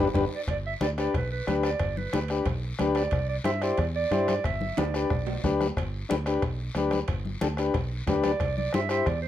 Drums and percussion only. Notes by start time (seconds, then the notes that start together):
0.14 bombo low, high conga, high timbale, long guiro
0.48 bombo low, bombo rim, high conga, high timbale, long guiro
0.81 bombo rim, high conga, high timbale, short guiro
0.98 bombo rim, high timbale, short guiro
1.14 bombo low, bombo rim, high conga, high timbale, long guiro
1.47 bombo rim, high conga, high timbale, short guiro
1.63 bombo rim, high timbale, short guiro
1.79 bombo low, bombo rim, high conga, high timbale, long guiro
1.97 high conga
2.13 bombo rim, high conga, high timbale, short guiro
2.28 bombo rim, high timbale, short guiro
2.46 bombo low, bombo rim, high conga, high timbale, long guiro
2.79 bombo rim, high conga, high timbale, low timbale, short guiro
2.95 bombo rim, high timbale, short guiro
3.11 bombo low, bombo rim, high conga, high timbale, long guiro
3.44 bombo rim, high conga, high timbale, short guiro
3.62 bombo rim, high timbale, short guiro
3.78 bombo low, bombo rim, high conga, high timbale, long guiro
4.12 bombo rim, high conga, high timbale, short guiro
4.28 bombo rim, high conga, high timbale, short guiro
4.44 bombo low, bombo rim, high conga, high timbale, long guiro
4.61 high conga
4.77 bombo rim, high conga, high timbale, short guiro
4.94 bombo rim, short guiro
5.10 bombo low, bombo rim, high conga, high timbale, long guiro
5.27 low timbale
5.44 bombo low, bombo rim, high conga, low timbale, short guiro
5.61 bombo rim, high conga, low timbale, short guiro
5.77 bombo low, bombo rim, high conga, high timbale, long guiro
6.10 bombo rim, high conga, high timbale, short guiro
6.26 bombo rim, high timbale, short guiro
6.42 bombo low, bombo rim, high conga, high timbale, long guiro
6.75 bombo rim, high conga, high timbale, short guiro
6.91 bombo rim, high conga, high timbale, short guiro
7.08 bombo low, bombo rim, high conga, high timbale, long guiro
7.25 high conga
7.41 bombo rim, high conga, high timbale, short guiro
7.57 bombo rim, high timbale, short guiro
7.74 bombo low, bombo rim, high conga, high timbale, long guiro
8.07 bombo low, bombo rim, high conga, high timbale, low timbale, short guiro
8.23 bombo rim, high conga, high timbale, short guiro
8.40 bombo low, bombo rim, high conga, high timbale, long guiro
8.58 high conga
8.73 bombo rim, high conga, high timbale, short guiro
8.89 bombo rim, high timbale, short guiro
9.06 bombo low, bombo rim, high conga, high timbale, long guiro